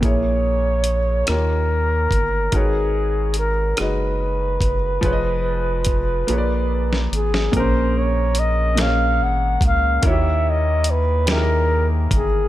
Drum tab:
HH |x---x-x---x-|x---x-x---x-|x---x-x---x-|x---x-x---x-|
SD |------r-----|------r-----|---------o-o|------o-----|
BD |o---------o-|o---------o-|o---o-------|o---------o-|

HH |x---x-x---x-|
SD |------o-----|
BD |o---------o-|